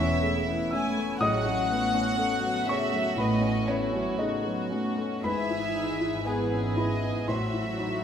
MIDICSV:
0, 0, Header, 1, 7, 480
1, 0, Start_track
1, 0, Tempo, 980392
1, 592, Time_signature, 4, 2, 24, 8
1, 1557, Tempo, 1027397
1, 3827, End_track
2, 0, Start_track
2, 0, Title_t, "Violin section"
2, 0, Program_c, 0, 48
2, 0, Note_on_c, 0, 76, 69
2, 353, Note_off_c, 0, 76, 0
2, 363, Note_on_c, 0, 80, 59
2, 593, Note_off_c, 0, 80, 0
2, 594, Note_on_c, 0, 78, 82
2, 1299, Note_off_c, 0, 78, 0
2, 1317, Note_on_c, 0, 76, 69
2, 1559, Note_off_c, 0, 76, 0
2, 1561, Note_on_c, 0, 75, 62
2, 1793, Note_on_c, 0, 64, 53
2, 1794, Note_off_c, 0, 75, 0
2, 2029, Note_on_c, 0, 66, 54
2, 2030, Note_off_c, 0, 64, 0
2, 2525, Note_off_c, 0, 66, 0
2, 2529, Note_on_c, 0, 76, 69
2, 2993, Note_off_c, 0, 76, 0
2, 3001, Note_on_c, 0, 71, 50
2, 3239, Note_off_c, 0, 71, 0
2, 3239, Note_on_c, 0, 75, 58
2, 3478, Note_off_c, 0, 75, 0
2, 3478, Note_on_c, 0, 76, 49
2, 3827, Note_off_c, 0, 76, 0
2, 3827, End_track
3, 0, Start_track
3, 0, Title_t, "Violin section"
3, 0, Program_c, 1, 48
3, 0, Note_on_c, 1, 64, 52
3, 574, Note_off_c, 1, 64, 0
3, 602, Note_on_c, 1, 66, 55
3, 2511, Note_off_c, 1, 66, 0
3, 2527, Note_on_c, 1, 68, 51
3, 2983, Note_off_c, 1, 68, 0
3, 2999, Note_on_c, 1, 68, 47
3, 3467, Note_off_c, 1, 68, 0
3, 3475, Note_on_c, 1, 66, 44
3, 3827, Note_off_c, 1, 66, 0
3, 3827, End_track
4, 0, Start_track
4, 0, Title_t, "Grand piano"
4, 0, Program_c, 2, 0
4, 0, Control_c, 2, 64, 127
4, 0, Note_on_c, 2, 52, 53
4, 0, Note_on_c, 2, 57, 47
4, 0, Note_on_c, 2, 59, 50
4, 0, Note_on_c, 2, 61, 54
4, 0, Note_on_c, 2, 73, 58
4, 0, Note_on_c, 2, 76, 58
4, 0, Note_on_c, 2, 85, 79
4, 0, Note_on_c, 2, 88, 83
4, 117, Note_off_c, 2, 57, 0
4, 117, Note_on_c, 2, 57, 48
4, 188, Note_off_c, 2, 61, 0
4, 235, Note_off_c, 2, 59, 0
4, 235, Note_on_c, 2, 59, 42
4, 307, Note_off_c, 2, 57, 0
4, 336, Note_off_c, 2, 85, 0
4, 337, Note_off_c, 2, 73, 0
4, 346, Note_off_c, 2, 88, 0
4, 346, Note_on_c, 2, 88, 59
4, 352, Note_off_c, 2, 76, 0
4, 352, Note_on_c, 2, 76, 47
4, 354, Note_off_c, 2, 59, 0
4, 356, Note_on_c, 2, 61, 49
4, 473, Note_on_c, 2, 57, 49
4, 546, Note_off_c, 2, 61, 0
4, 572, Note_off_c, 2, 88, 0
4, 575, Note_off_c, 2, 76, 0
4, 589, Note_on_c, 2, 45, 65
4, 591, Note_on_c, 2, 87, 94
4, 593, Note_off_c, 2, 57, 0
4, 598, Note_on_c, 2, 75, 69
4, 601, Control_c, 2, 64, 0
4, 604, Note_off_c, 2, 52, 0
4, 674, Control_c, 2, 64, 127
4, 712, Note_on_c, 2, 61, 46
4, 833, Note_on_c, 2, 59, 44
4, 904, Note_off_c, 2, 61, 0
4, 950, Note_on_c, 2, 61, 49
4, 952, Note_off_c, 2, 59, 0
4, 1063, Note_on_c, 2, 57, 56
4, 1143, Note_off_c, 2, 61, 0
4, 1187, Note_on_c, 2, 59, 36
4, 1260, Note_off_c, 2, 57, 0
4, 1292, Note_off_c, 2, 87, 0
4, 1296, Note_off_c, 2, 75, 0
4, 1306, Note_on_c, 2, 61, 45
4, 1311, Note_off_c, 2, 59, 0
4, 1319, Note_on_c, 2, 85, 68
4, 1328, Note_on_c, 2, 73, 54
4, 1428, Note_on_c, 2, 57, 46
4, 1504, Note_off_c, 2, 61, 0
4, 1535, Note_off_c, 2, 45, 0
4, 1543, Note_off_c, 2, 85, 0
4, 1548, Note_off_c, 2, 73, 0
4, 1549, Note_on_c, 2, 45, 53
4, 1557, Note_on_c, 2, 83, 67
4, 1564, Note_on_c, 2, 71, 49
4, 1624, Note_off_c, 2, 57, 0
4, 1664, Note_on_c, 2, 61, 47
4, 1776, Note_off_c, 2, 83, 0
4, 1779, Note_off_c, 2, 71, 0
4, 1787, Note_on_c, 2, 59, 42
4, 1789, Note_off_c, 2, 61, 0
4, 1789, Note_on_c, 2, 73, 69
4, 1796, Note_on_c, 2, 61, 46
4, 1894, Note_off_c, 2, 61, 0
4, 1901, Note_on_c, 2, 61, 49
4, 1908, Note_off_c, 2, 59, 0
4, 2011, Note_off_c, 2, 73, 0
4, 2022, Note_on_c, 2, 57, 46
4, 2028, Note_on_c, 2, 75, 62
4, 2031, Note_on_c, 2, 63, 46
4, 2097, Note_off_c, 2, 61, 0
4, 2143, Note_on_c, 2, 59, 37
4, 2221, Note_off_c, 2, 57, 0
4, 2267, Note_on_c, 2, 61, 47
4, 2272, Note_off_c, 2, 59, 0
4, 2391, Note_on_c, 2, 57, 44
4, 2472, Note_off_c, 2, 61, 0
4, 2503, Note_off_c, 2, 45, 0
4, 2506, Note_off_c, 2, 75, 0
4, 2508, Note_off_c, 2, 63, 0
4, 2519, Note_on_c, 2, 44, 51
4, 2519, Note_on_c, 2, 83, 77
4, 2520, Note_off_c, 2, 57, 0
4, 2524, Note_on_c, 2, 71, 56
4, 2533, Control_c, 2, 64, 0
4, 2604, Control_c, 2, 64, 127
4, 2643, Note_on_c, 2, 64, 38
4, 2764, Note_on_c, 2, 63, 38
4, 2834, Note_off_c, 2, 64, 0
4, 2878, Note_on_c, 2, 64, 42
4, 2883, Note_off_c, 2, 63, 0
4, 2980, Note_off_c, 2, 83, 0
4, 2982, Note_off_c, 2, 71, 0
4, 2996, Note_on_c, 2, 80, 59
4, 2997, Note_on_c, 2, 59, 46
4, 3000, Note_on_c, 2, 68, 45
4, 3070, Note_off_c, 2, 64, 0
4, 3118, Note_on_c, 2, 61, 32
4, 3189, Note_off_c, 2, 59, 0
4, 3220, Note_off_c, 2, 80, 0
4, 3222, Note_off_c, 2, 68, 0
4, 3233, Note_on_c, 2, 64, 40
4, 3238, Note_off_c, 2, 61, 0
4, 3238, Note_on_c, 2, 83, 57
4, 3244, Note_on_c, 2, 71, 44
4, 3353, Note_on_c, 2, 59, 37
4, 3427, Note_off_c, 2, 64, 0
4, 3456, Note_off_c, 2, 44, 0
4, 3460, Note_off_c, 2, 83, 0
4, 3463, Note_off_c, 2, 71, 0
4, 3472, Note_on_c, 2, 45, 53
4, 3472, Note_on_c, 2, 84, 58
4, 3475, Note_off_c, 2, 59, 0
4, 3478, Note_on_c, 2, 72, 40
4, 3486, Control_c, 2, 64, 0
4, 3576, Control_c, 2, 64, 127
4, 3591, Note_on_c, 2, 64, 34
4, 3708, Note_on_c, 2, 63, 36
4, 3784, Note_off_c, 2, 64, 0
4, 3827, Note_off_c, 2, 45, 0
4, 3827, Note_off_c, 2, 63, 0
4, 3827, Note_off_c, 2, 72, 0
4, 3827, Note_off_c, 2, 84, 0
4, 3827, End_track
5, 0, Start_track
5, 0, Title_t, "Viola section"
5, 0, Program_c, 3, 48
5, 0, Note_on_c, 3, 52, 56
5, 115, Note_off_c, 3, 52, 0
5, 116, Note_on_c, 3, 49, 52
5, 235, Note_off_c, 3, 49, 0
5, 235, Note_on_c, 3, 52, 46
5, 354, Note_off_c, 3, 52, 0
5, 357, Note_on_c, 3, 57, 49
5, 475, Note_off_c, 3, 57, 0
5, 477, Note_on_c, 3, 61, 46
5, 594, Note_off_c, 3, 61, 0
5, 599, Note_on_c, 3, 49, 54
5, 599, Note_on_c, 3, 54, 46
5, 707, Note_off_c, 3, 49, 0
5, 715, Note_off_c, 3, 54, 0
5, 720, Note_on_c, 3, 54, 47
5, 836, Note_off_c, 3, 54, 0
5, 838, Note_on_c, 3, 57, 47
5, 955, Note_off_c, 3, 57, 0
5, 960, Note_on_c, 3, 61, 48
5, 1074, Note_on_c, 3, 57, 48
5, 1076, Note_off_c, 3, 61, 0
5, 1191, Note_on_c, 3, 54, 42
5, 1193, Note_off_c, 3, 57, 0
5, 1312, Note_off_c, 3, 54, 0
5, 1313, Note_on_c, 3, 49, 47
5, 1434, Note_off_c, 3, 49, 0
5, 1434, Note_on_c, 3, 54, 43
5, 1557, Note_off_c, 3, 54, 0
5, 1558, Note_on_c, 3, 57, 56
5, 1666, Note_off_c, 3, 57, 0
5, 1673, Note_on_c, 3, 61, 46
5, 1791, Note_off_c, 3, 61, 0
5, 1791, Note_on_c, 3, 57, 42
5, 1910, Note_off_c, 3, 57, 0
5, 1911, Note_on_c, 3, 54, 46
5, 2030, Note_off_c, 3, 54, 0
5, 2030, Note_on_c, 3, 49, 45
5, 2150, Note_off_c, 3, 49, 0
5, 2154, Note_on_c, 3, 54, 45
5, 2277, Note_off_c, 3, 54, 0
5, 2278, Note_on_c, 3, 57, 45
5, 2403, Note_off_c, 3, 57, 0
5, 2407, Note_on_c, 3, 61, 41
5, 2528, Note_off_c, 3, 61, 0
5, 2529, Note_on_c, 3, 52, 44
5, 2529, Note_on_c, 3, 64, 52
5, 2984, Note_off_c, 3, 52, 0
5, 2984, Note_off_c, 3, 64, 0
5, 3001, Note_on_c, 3, 52, 42
5, 3003, Note_on_c, 3, 64, 42
5, 3468, Note_off_c, 3, 52, 0
5, 3469, Note_off_c, 3, 64, 0
5, 3478, Note_on_c, 3, 64, 50
5, 3479, Note_on_c, 3, 54, 47
5, 3827, Note_off_c, 3, 54, 0
5, 3827, Note_off_c, 3, 64, 0
5, 3827, End_track
6, 0, Start_track
6, 0, Title_t, "Cello section"
6, 0, Program_c, 4, 48
6, 594, Note_on_c, 4, 45, 60
6, 992, Note_off_c, 4, 45, 0
6, 1560, Note_on_c, 4, 45, 59
6, 1952, Note_off_c, 4, 45, 0
6, 2523, Note_on_c, 4, 44, 48
6, 3458, Note_off_c, 4, 44, 0
6, 3475, Note_on_c, 4, 45, 50
6, 3827, Note_off_c, 4, 45, 0
6, 3827, End_track
7, 0, Start_track
7, 0, Title_t, "Double bass section"
7, 0, Program_c, 5, 48
7, 596, Note_on_c, 5, 33, 60
7, 993, Note_off_c, 5, 33, 0
7, 1557, Note_on_c, 5, 33, 60
7, 1950, Note_off_c, 5, 33, 0
7, 2526, Note_on_c, 5, 32, 51
7, 3459, Note_off_c, 5, 32, 0
7, 3475, Note_on_c, 5, 33, 52
7, 3827, Note_off_c, 5, 33, 0
7, 3827, End_track
0, 0, End_of_file